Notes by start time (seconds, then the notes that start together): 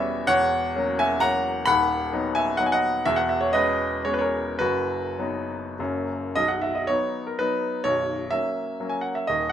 Already playing: E1 E2 G3 B3 C#4 C#5 E5
0.27 E1 E2 C#5 F#5
0.76 F#3 A#3 C#4
0.99 E5 G#5
1.20 F#3 A#3 C#4 F#5 A#5
1.66 D#1 D#2 F#5 B5
2.13 F#3 B3 D#4
2.35 E5 G#5
2.57 F#3 B3 D#4 F#5
2.66 G#5
2.72 D#5 F#5
3.06 E1 E2 E5
3.16 F#5
3.29 E5
3.41 C#5
3.53 G#3 B3 C#4 B4 D#5
4.05 G#3 B3 C#4 C#5
4.14 B4
4.19 A#4 C#5
4.59 F#1 F#2 F#4 B4
5.18 F#3 B3 D#4
5.79 F#1 F#2 F#3 A#3 C#4
6.35 B0 B1 D#5
6.48 F#5
6.62 E5
6.75 D#5
6.87 F#3 B3 D#4 C#5
7.27 A#4
7.39 F#3 B3 D#4 B4
7.84 B0 B1 C#5
8.30 F#3 A#3 C#4 E5
8.80 F#3 A#3 C#4
8.89 G#5
9.01 F#5
9.15 E5
9.27 D#1 D#2 D#5